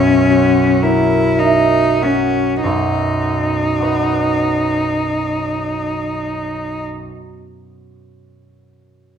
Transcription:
Already playing: B1 F#2 C#4 F#4
0.30 F#4
0.82 E4 A#4
1.38 D#4 E5
2.02 C#4 F#4
2.63 B1 F#2 D#4
3.80 F#4 B4
3.84 D#5

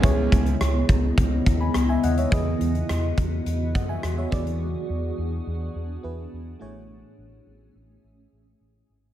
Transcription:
Already playing: G#3 C#4
0.02 C#2 C#3 G#3 B3 E4 G#4 C#5 D#5, kick, closed hi-hat
0.32 C#2, kick, closed hi-hat
0.46 closed hi-hat
0.61 C#2, cross-stick, closed hi-hat
0.89 C#2, kick, closed hi-hat
1.18 C#2, kick, closed hi-hat
1.46 D#2, kick, closed hi-hat
1.61 G#5 B5
1.74 C#2, cross-stick, closed hi-hat
1.89 E5 G#5
2.03 D#2 D#5 F#5, closed hi-hat
2.18 C#5 E5, closed hi-hat
2.31 E2 E3 B3 E4 F#4 G#4 D#5, kick, closed hi-hat
2.60 E2, closed hi-hat
2.75 closed hi-hat
2.89 E2, cross-stick, closed hi-hat
3.18 E2, kick, closed hi-hat
3.46 E2, closed hi-hat
3.75 F#2 D#5 F#5, kick, closed hi-hat
3.89 E5 G#5
4.03 E2, cross-stick, closed hi-hat
4.18 C#5 E5
4.31 E2 E3 B3 D4 E4 G#4 D5, kick, closed hi-hat
4.47 closed hi-hat
4.89 E2
5.18 E2
5.47 E2
5.75 E2
6.03 E2 B3 E4 G#4 B4
6.33 E2
6.59 A1 A2 A3 C#4 E4 G#4 C#5
7.18 A1
7.47 A1
7.75 A1
8.04 A1
8.32 A1
8.60 A1
8.89 G#1

